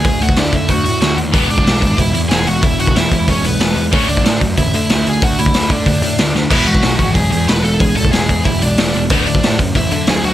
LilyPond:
<<
  \new Staff \with { instrumentName = "Lead electric guitar" } { \time 4/4 \key e \mixolydian \tempo 4 = 186 <gis' gis''>8 <fis' fis''>8 <d' d''>8 <e' e''>8 <fis' fis''>4. r8 | <b b'>8 <d' d''>4. <e' e''>8 <e' e''>8 <gis' gis''>8 <fis' fis''>8 | <e' e''>8 <fis' fis''>8 <e' e''>4 <cis' cis''>8 <b b'>8 <b b'>8. r16 | <cis' cis''>8 <d' d''>4 r8 <e' e''>8 <e' e''>4 <gis' gis''>8 |
<fis' fis''>8 <e' e''>4 <d' d''>2 r8 | <e' e''>8 <fis' fis''>4. <gis' gis''>8 <gis' gis''>8 <b' b''>8 <a' a''>8 | <gis' gis''>8 <a' a''>8 <gis' gis''>4 <e' e''>8 <d' d''>8 <d' d''>8. r16 | <b b'>8 <d' d''>4 r8 <e' e''>8 <e' e''>8 <gis' gis''>8 <fis' fis''>8 | }
  \new Staff \with { instrumentName = "Overdriven electric guitar" } { \clef bass \time 4/4 \key e \mixolydian <d a>8 <d a>8 <d a>8 <d a>8 <d a>8 <d a>8 <d a>8 <d a>8 | <e gis b>8 <e gis>8 <e gis>8 <e gis>8 <e gis>8 <e gis>8 <e gis>8 <e gis>8 | <e gis>8 <e gis>8 <e gis>8 <e gis>8 <e gis>8 <e gis>8 <e gis>8 <e gis>8 | <d a d'>8 <d a>8 <d a>8 <d a>8 <d a>8 <d a>8 <d a>8 <d a>8 |
<d a>8 <d a>8 <d a>8 <d a>8 <d a>8 <d a>8 <d a>8 <d a>8 | <e gis b>8 <e gis>8 <e gis>8 <e gis>8 <e gis>8 <e gis>8 <e gis>8 <e gis>8 | <e gis>8 <e gis>8 <e gis>8 <e gis>8 <e gis>8 <e gis>8 <e gis>8 <e gis>8 | <d fis a>8 <d fis>8 <d fis>8 <d fis>8 <d fis>8 <d fis>8 <d fis>8 <d fis>8 | }
  \new Staff \with { instrumentName = "Picked electric bass" } { \clef bass \time 4/4 \key e \mixolydian d,8 d,8 d,8 d8 d,8 a,8 d,8 dis,8 | e,,8 e,,8 b,,8 gis,,8 b,,8 e,8 e,,8 e,,8 | e,,8 e,,8 e,,8 e,8 e,,8 b,,8 e,,8 e,8 | d,8 d,8 a,8 fis,8 a,,8 d8 d,8 d,8 |
d,8 d,8 d,8 d8 d,8 a,8 d,8 d,8 | e,,8 e,,8 b,,8 gis,,8 b,,8 e,8 e,,8 e,,8 | e,,8 e,,8 e,,8 e,8 e,,8 b,,8 e,,8 e,,8 | d,8 d,8 a,8 fis,8 a,,8 d8 d,8 d,8 | }
  \new DrumStaff \with { instrumentName = "Drums" } \drummode { \time 4/4 <hho bd>8 hho16 bd16 <hho sn>8 <hho bd>8 <hho bd>8 hho8 <hho sn>8 hho8 | <hho bd>8 hho16 bd16 <hho sn>8 <hho bd>8 <hho bd>8 hho8 <hho sn>8 hho8 | <hho bd>8 hho16 bd16 <hho sn>8 <hho bd>8 <hho bd>8 hho8 <hho sn>8 hho8 | <hho bd>8 hho16 bd16 <hho sn>8 <hho bd>8 <hho bd>8 hho8 <hho sn>8 hho8 |
<hho bd>8 hho16 bd16 <hho sn>8 <hho bd>8 <hho bd>8 hho8 <hho sn>8 sn8 | <cymc hho bd>8 hho16 bd16 <hho sn>8 <hho bd>8 <hho bd>8 hho8 <hho sn>8 hho8 | <hho bd>8 hho16 bd16 <hho sn>8 <hho bd>8 <hho bd>8 hho8 <hho sn>8 hho8 | <hho bd>8 hho16 bd16 <hho sn>8 <hho bd>8 <hho bd>8 hho8 <hho sn>8 hho8 | }
>>